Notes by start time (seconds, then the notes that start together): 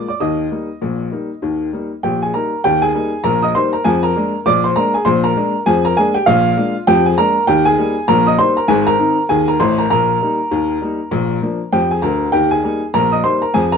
0.08 D5 D6
0.20 D#2 D#3 D#5 D#6
0.51 G3 A#3 D#4
0.82 A#1 A#2
1.12 G3 A#3 D#4
1.42 D#2 D#3
1.73 G3 A#3 D#4
2.03 A#1 A#2 G4 G5
2.22 G#4 G#5
2.34 G3 A#3 D#4 A#4 A#5
2.64 D#2 D#3 G4 G5
2.82 G#4 G#5
2.94 G3 A#3 D#4
3.24 A#1 A#2 A#4 A#5
3.42 D#5 D#6
3.55 G3 A#3 D#4 C5 C6
3.73 A#4 A#5
3.84 F2 F3 G#4 G#5
4.03 A#4 A#5
4.16 G#3 A#3 D4
4.46 A#1 A#2 D5 D6
4.64 C5 C6
4.76 G#3 A#3 D4 A#4 A#5
4.94 G#4 G#5
5.05 A#1 A#2 C5 C6
5.24 A#4 A#5
5.37 G#3 A#3 D4
5.66 F2 F3 G#4 G#5
5.85 A#4 A#5
5.97 G#3 A#3 D4 G#4 G#5
6.14 G4 G5
6.26 A#1 A#2 F4 F5
6.57 G#3 A#3 D4
6.87 F2 F3 G4 G5
7.06 G#4 G#5
7.18 G#3 A#3 D4 A#4 A#5
7.47 D#2 D#3 G4 G5
7.65 G#4 G#5
7.78 G3 A#3 D#4
8.08 A#1 A#2 A#4 A#5
8.27 D#5 D#6
8.39 G3 A#3 D#4 C5 C6
8.57 A#4 A#5
8.68 G#1 G#2 G#4 G#5
8.87 A#4 A#5
8.99 D#3 C4 D#4
9.29 D#2 D#3 G#4 G#5
9.48 A#4 A#5
9.60 A1 A2 C5 C6
9.78 A#4 A#5
9.90 A#1 A#2 A#4 A#5
10.22 G3 A#3 D#4
10.51 D#2 D#3
10.81 G3 A#3 D#4
11.11 A#1 A#2
11.42 F3 A#3 D4
11.72 F2 F3 G4 G5
11.91 G#4 G#5
12.02 D2 D3 A#4 A#5
12.32 D#2 D#3 G4 G5
12.51 G#4 G#5
12.63 G3 A#3 D#4
12.94 A#1 A#2 A#4 A#5
13.12 D#5 D#6
13.24 G3 A#3 D#4 C5 C6
13.42 A#4 A#5
13.54 F2 F3 G#4 G#5
13.72 A#4 A#5